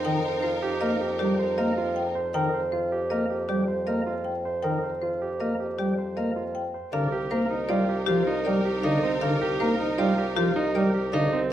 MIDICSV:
0, 0, Header, 1, 6, 480
1, 0, Start_track
1, 0, Tempo, 382166
1, 64, Time_signature, 6, 2, 24, 8
1, 14480, End_track
2, 0, Start_track
2, 0, Title_t, "Marimba"
2, 0, Program_c, 0, 12
2, 60, Note_on_c, 0, 79, 81
2, 374, Note_off_c, 0, 79, 0
2, 534, Note_on_c, 0, 72, 68
2, 852, Note_off_c, 0, 72, 0
2, 1013, Note_on_c, 0, 75, 73
2, 1332, Note_off_c, 0, 75, 0
2, 1497, Note_on_c, 0, 67, 81
2, 1814, Note_off_c, 0, 67, 0
2, 1983, Note_on_c, 0, 75, 57
2, 2295, Note_off_c, 0, 75, 0
2, 2461, Note_on_c, 0, 79, 60
2, 2775, Note_off_c, 0, 79, 0
2, 2942, Note_on_c, 0, 79, 77
2, 3255, Note_off_c, 0, 79, 0
2, 3418, Note_on_c, 0, 72, 58
2, 3734, Note_off_c, 0, 72, 0
2, 3896, Note_on_c, 0, 75, 64
2, 4213, Note_off_c, 0, 75, 0
2, 4381, Note_on_c, 0, 67, 69
2, 4695, Note_off_c, 0, 67, 0
2, 4857, Note_on_c, 0, 75, 54
2, 5173, Note_off_c, 0, 75, 0
2, 5331, Note_on_c, 0, 79, 53
2, 5651, Note_off_c, 0, 79, 0
2, 5809, Note_on_c, 0, 79, 63
2, 6130, Note_off_c, 0, 79, 0
2, 6300, Note_on_c, 0, 72, 46
2, 6615, Note_off_c, 0, 72, 0
2, 6789, Note_on_c, 0, 75, 51
2, 7097, Note_off_c, 0, 75, 0
2, 7266, Note_on_c, 0, 67, 66
2, 7577, Note_off_c, 0, 67, 0
2, 7747, Note_on_c, 0, 75, 50
2, 8057, Note_off_c, 0, 75, 0
2, 8225, Note_on_c, 0, 79, 55
2, 8536, Note_off_c, 0, 79, 0
2, 8704, Note_on_c, 0, 77, 89
2, 9016, Note_off_c, 0, 77, 0
2, 9181, Note_on_c, 0, 72, 69
2, 9495, Note_off_c, 0, 72, 0
2, 9655, Note_on_c, 0, 74, 82
2, 9973, Note_off_c, 0, 74, 0
2, 10128, Note_on_c, 0, 67, 99
2, 10451, Note_off_c, 0, 67, 0
2, 10613, Note_on_c, 0, 74, 72
2, 10932, Note_off_c, 0, 74, 0
2, 11095, Note_on_c, 0, 77, 72
2, 11413, Note_off_c, 0, 77, 0
2, 11573, Note_on_c, 0, 77, 89
2, 11892, Note_off_c, 0, 77, 0
2, 12058, Note_on_c, 0, 72, 77
2, 12374, Note_off_c, 0, 72, 0
2, 12540, Note_on_c, 0, 74, 80
2, 12855, Note_off_c, 0, 74, 0
2, 13018, Note_on_c, 0, 67, 102
2, 13334, Note_off_c, 0, 67, 0
2, 13505, Note_on_c, 0, 74, 77
2, 13816, Note_off_c, 0, 74, 0
2, 13983, Note_on_c, 0, 77, 83
2, 14295, Note_off_c, 0, 77, 0
2, 14480, End_track
3, 0, Start_track
3, 0, Title_t, "Grand piano"
3, 0, Program_c, 1, 0
3, 0, Note_on_c, 1, 72, 74
3, 137, Note_off_c, 1, 72, 0
3, 314, Note_on_c, 1, 72, 65
3, 548, Note_on_c, 1, 65, 69
3, 619, Note_off_c, 1, 72, 0
3, 785, Note_on_c, 1, 67, 89
3, 857, Note_off_c, 1, 65, 0
3, 1026, Note_on_c, 1, 70, 75
3, 1096, Note_off_c, 1, 67, 0
3, 1267, Note_on_c, 1, 67, 64
3, 1337, Note_off_c, 1, 70, 0
3, 1577, Note_off_c, 1, 67, 0
3, 1746, Note_on_c, 1, 72, 63
3, 1984, Note_on_c, 1, 70, 63
3, 2057, Note_off_c, 1, 72, 0
3, 2232, Note_on_c, 1, 65, 77
3, 2296, Note_off_c, 1, 70, 0
3, 2538, Note_off_c, 1, 65, 0
3, 2704, Note_on_c, 1, 72, 67
3, 2945, Note_on_c, 1, 70, 82
3, 3016, Note_off_c, 1, 72, 0
3, 3187, Note_on_c, 1, 72, 59
3, 3256, Note_off_c, 1, 70, 0
3, 3427, Note_on_c, 1, 65, 61
3, 3497, Note_off_c, 1, 72, 0
3, 3668, Note_on_c, 1, 67, 70
3, 3737, Note_off_c, 1, 65, 0
3, 3903, Note_on_c, 1, 70, 66
3, 3977, Note_off_c, 1, 67, 0
3, 4147, Note_on_c, 1, 67, 57
3, 4215, Note_off_c, 1, 70, 0
3, 4457, Note_off_c, 1, 67, 0
3, 4621, Note_on_c, 1, 72, 56
3, 4865, Note_on_c, 1, 70, 58
3, 4935, Note_off_c, 1, 72, 0
3, 5108, Note_on_c, 1, 65, 68
3, 5176, Note_off_c, 1, 70, 0
3, 5417, Note_off_c, 1, 65, 0
3, 5592, Note_on_c, 1, 72, 57
3, 5827, Note_on_c, 1, 70, 67
3, 5899, Note_off_c, 1, 72, 0
3, 6073, Note_on_c, 1, 72, 46
3, 6137, Note_off_c, 1, 70, 0
3, 6312, Note_on_c, 1, 65, 57
3, 6379, Note_off_c, 1, 72, 0
3, 6552, Note_on_c, 1, 67, 64
3, 6619, Note_off_c, 1, 65, 0
3, 6789, Note_on_c, 1, 70, 55
3, 6859, Note_off_c, 1, 67, 0
3, 7032, Note_on_c, 1, 67, 56
3, 7098, Note_off_c, 1, 70, 0
3, 7339, Note_off_c, 1, 67, 0
3, 7514, Note_on_c, 1, 72, 49
3, 7753, Note_on_c, 1, 70, 51
3, 7819, Note_off_c, 1, 72, 0
3, 7990, Note_on_c, 1, 65, 58
3, 8059, Note_off_c, 1, 70, 0
3, 8298, Note_off_c, 1, 65, 0
3, 8469, Note_on_c, 1, 72, 49
3, 8706, Note_on_c, 1, 70, 73
3, 8778, Note_off_c, 1, 72, 0
3, 8945, Note_on_c, 1, 67, 79
3, 9016, Note_off_c, 1, 70, 0
3, 9187, Note_on_c, 1, 70, 73
3, 9256, Note_off_c, 1, 67, 0
3, 9426, Note_on_c, 1, 63, 74
3, 9497, Note_off_c, 1, 70, 0
3, 9665, Note_on_c, 1, 65, 93
3, 9737, Note_off_c, 1, 63, 0
3, 9906, Note_on_c, 1, 67, 74
3, 9976, Note_off_c, 1, 65, 0
3, 10152, Note_on_c, 1, 65, 82
3, 10217, Note_off_c, 1, 67, 0
3, 10386, Note_on_c, 1, 63, 90
3, 10459, Note_off_c, 1, 65, 0
3, 10629, Note_on_c, 1, 70, 69
3, 10697, Note_off_c, 1, 63, 0
3, 10867, Note_on_c, 1, 67, 75
3, 10938, Note_off_c, 1, 70, 0
3, 11105, Note_on_c, 1, 63, 98
3, 11177, Note_off_c, 1, 67, 0
3, 11345, Note_on_c, 1, 60, 80
3, 11416, Note_off_c, 1, 63, 0
3, 11583, Note_on_c, 1, 70, 74
3, 11656, Note_off_c, 1, 60, 0
3, 11824, Note_on_c, 1, 67, 95
3, 11896, Note_off_c, 1, 70, 0
3, 12065, Note_on_c, 1, 70, 77
3, 12136, Note_off_c, 1, 67, 0
3, 12301, Note_on_c, 1, 63, 84
3, 12376, Note_off_c, 1, 70, 0
3, 12539, Note_on_c, 1, 65, 97
3, 12615, Note_off_c, 1, 63, 0
3, 12785, Note_on_c, 1, 67, 78
3, 12854, Note_off_c, 1, 65, 0
3, 13019, Note_on_c, 1, 65, 81
3, 13096, Note_off_c, 1, 67, 0
3, 13262, Note_on_c, 1, 63, 101
3, 13334, Note_off_c, 1, 65, 0
3, 13501, Note_on_c, 1, 70, 74
3, 13575, Note_off_c, 1, 63, 0
3, 13744, Note_on_c, 1, 67, 78
3, 13815, Note_off_c, 1, 70, 0
3, 13987, Note_on_c, 1, 63, 111
3, 14056, Note_off_c, 1, 67, 0
3, 14229, Note_on_c, 1, 60, 88
3, 14297, Note_off_c, 1, 63, 0
3, 14480, Note_off_c, 1, 60, 0
3, 14480, End_track
4, 0, Start_track
4, 0, Title_t, "String section"
4, 0, Program_c, 2, 48
4, 0, Note_on_c, 2, 63, 75
4, 0, Note_on_c, 2, 70, 80
4, 2648, Note_off_c, 2, 63, 0
4, 2648, Note_off_c, 2, 70, 0
4, 8707, Note_on_c, 2, 63, 73
4, 8711, Note_on_c, 2, 70, 77
4, 14175, Note_off_c, 2, 63, 0
4, 14177, Note_off_c, 2, 70, 0
4, 14480, End_track
5, 0, Start_track
5, 0, Title_t, "Pipe organ"
5, 0, Program_c, 3, 19
5, 68, Note_on_c, 3, 51, 78
5, 246, Note_off_c, 3, 51, 0
5, 1024, Note_on_c, 3, 58, 59
5, 1204, Note_off_c, 3, 58, 0
5, 1514, Note_on_c, 3, 55, 81
5, 1690, Note_off_c, 3, 55, 0
5, 1989, Note_on_c, 3, 58, 69
5, 2167, Note_off_c, 3, 58, 0
5, 2947, Note_on_c, 3, 51, 67
5, 3126, Note_off_c, 3, 51, 0
5, 3911, Note_on_c, 3, 58, 52
5, 4089, Note_off_c, 3, 58, 0
5, 4386, Note_on_c, 3, 55, 74
5, 4565, Note_off_c, 3, 55, 0
5, 4863, Note_on_c, 3, 58, 57
5, 5044, Note_off_c, 3, 58, 0
5, 5827, Note_on_c, 3, 51, 62
5, 6006, Note_off_c, 3, 51, 0
5, 6787, Note_on_c, 3, 58, 44
5, 6966, Note_off_c, 3, 58, 0
5, 7274, Note_on_c, 3, 55, 67
5, 7450, Note_off_c, 3, 55, 0
5, 7755, Note_on_c, 3, 58, 50
5, 7931, Note_off_c, 3, 58, 0
5, 8706, Note_on_c, 3, 50, 89
5, 8885, Note_off_c, 3, 50, 0
5, 9183, Note_on_c, 3, 58, 72
5, 9363, Note_off_c, 3, 58, 0
5, 9667, Note_on_c, 3, 55, 65
5, 9846, Note_off_c, 3, 55, 0
5, 10153, Note_on_c, 3, 53, 97
5, 10330, Note_off_c, 3, 53, 0
5, 10632, Note_on_c, 3, 55, 75
5, 10809, Note_off_c, 3, 55, 0
5, 11111, Note_on_c, 3, 50, 83
5, 11288, Note_off_c, 3, 50, 0
5, 11588, Note_on_c, 3, 50, 86
5, 11766, Note_off_c, 3, 50, 0
5, 12070, Note_on_c, 3, 58, 74
5, 12248, Note_off_c, 3, 58, 0
5, 12546, Note_on_c, 3, 55, 77
5, 12725, Note_off_c, 3, 55, 0
5, 13026, Note_on_c, 3, 53, 100
5, 13205, Note_off_c, 3, 53, 0
5, 13508, Note_on_c, 3, 55, 84
5, 13686, Note_off_c, 3, 55, 0
5, 13979, Note_on_c, 3, 50, 86
5, 14161, Note_off_c, 3, 50, 0
5, 14480, End_track
6, 0, Start_track
6, 0, Title_t, "Bassoon"
6, 0, Program_c, 4, 70
6, 0, Note_on_c, 4, 41, 83
6, 8558, Note_off_c, 4, 41, 0
6, 8710, Note_on_c, 4, 36, 78
6, 14480, Note_off_c, 4, 36, 0
6, 14480, End_track
0, 0, End_of_file